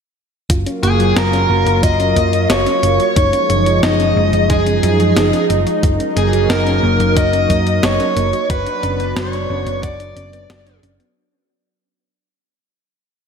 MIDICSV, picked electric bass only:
0, 0, Header, 1, 2, 480
1, 0, Start_track
1, 0, Key_signature, 6, "major"
1, 0, Tempo, 666667
1, 359, Time_signature, 4, 2, 24, 8
1, 9556, End_track
2, 0, Start_track
2, 0, Title_t, "Picked electric bass"
2, 0, Program_c, 0, 34
2, 359, Note_on_c, 0, 30, 91
2, 463, Note_off_c, 0, 30, 0
2, 599, Note_on_c, 0, 30, 74
2, 807, Note_off_c, 0, 30, 0
2, 838, Note_on_c, 0, 30, 84
2, 1046, Note_off_c, 0, 30, 0
2, 1078, Note_on_c, 0, 30, 93
2, 1183, Note_off_c, 0, 30, 0
2, 1198, Note_on_c, 0, 30, 90
2, 1303, Note_off_c, 0, 30, 0
2, 1319, Note_on_c, 0, 30, 86
2, 1527, Note_off_c, 0, 30, 0
2, 1559, Note_on_c, 0, 42, 96
2, 1767, Note_off_c, 0, 42, 0
2, 1798, Note_on_c, 0, 30, 97
2, 1902, Note_off_c, 0, 30, 0
2, 2038, Note_on_c, 0, 30, 77
2, 2143, Note_off_c, 0, 30, 0
2, 2280, Note_on_c, 0, 30, 91
2, 2383, Note_off_c, 0, 30, 0
2, 2519, Note_on_c, 0, 30, 71
2, 2726, Note_off_c, 0, 30, 0
2, 2759, Note_on_c, 0, 30, 84
2, 2967, Note_off_c, 0, 30, 0
2, 2999, Note_on_c, 0, 30, 96
2, 3103, Note_off_c, 0, 30, 0
2, 3120, Note_on_c, 0, 30, 89
2, 3223, Note_off_c, 0, 30, 0
2, 3239, Note_on_c, 0, 30, 85
2, 3447, Note_off_c, 0, 30, 0
2, 3479, Note_on_c, 0, 42, 101
2, 3687, Note_off_c, 0, 42, 0
2, 3720, Note_on_c, 0, 30, 94
2, 3823, Note_off_c, 0, 30, 0
2, 3960, Note_on_c, 0, 30, 77
2, 4064, Note_off_c, 0, 30, 0
2, 4200, Note_on_c, 0, 30, 94
2, 4303, Note_off_c, 0, 30, 0
2, 4440, Note_on_c, 0, 30, 72
2, 4647, Note_off_c, 0, 30, 0
2, 4679, Note_on_c, 0, 30, 92
2, 4887, Note_off_c, 0, 30, 0
2, 4920, Note_on_c, 0, 30, 95
2, 5023, Note_off_c, 0, 30, 0
2, 5040, Note_on_c, 0, 30, 87
2, 5144, Note_off_c, 0, 30, 0
2, 5159, Note_on_c, 0, 30, 84
2, 5367, Note_off_c, 0, 30, 0
2, 5399, Note_on_c, 0, 42, 104
2, 5607, Note_off_c, 0, 42, 0
2, 5640, Note_on_c, 0, 30, 97
2, 5743, Note_off_c, 0, 30, 0
2, 5879, Note_on_c, 0, 30, 79
2, 5983, Note_off_c, 0, 30, 0
2, 6119, Note_on_c, 0, 30, 98
2, 6223, Note_off_c, 0, 30, 0
2, 6360, Note_on_c, 0, 30, 75
2, 6567, Note_off_c, 0, 30, 0
2, 6600, Note_on_c, 0, 30, 90
2, 6807, Note_off_c, 0, 30, 0
2, 6840, Note_on_c, 0, 30, 99
2, 6944, Note_off_c, 0, 30, 0
2, 6960, Note_on_c, 0, 30, 91
2, 7063, Note_off_c, 0, 30, 0
2, 7079, Note_on_c, 0, 30, 98
2, 7287, Note_off_c, 0, 30, 0
2, 7320, Note_on_c, 0, 30, 80
2, 7527, Note_off_c, 0, 30, 0
2, 7559, Note_on_c, 0, 30, 97
2, 7767, Note_off_c, 0, 30, 0
2, 7800, Note_on_c, 0, 30, 89
2, 7903, Note_off_c, 0, 30, 0
2, 9556, End_track
0, 0, End_of_file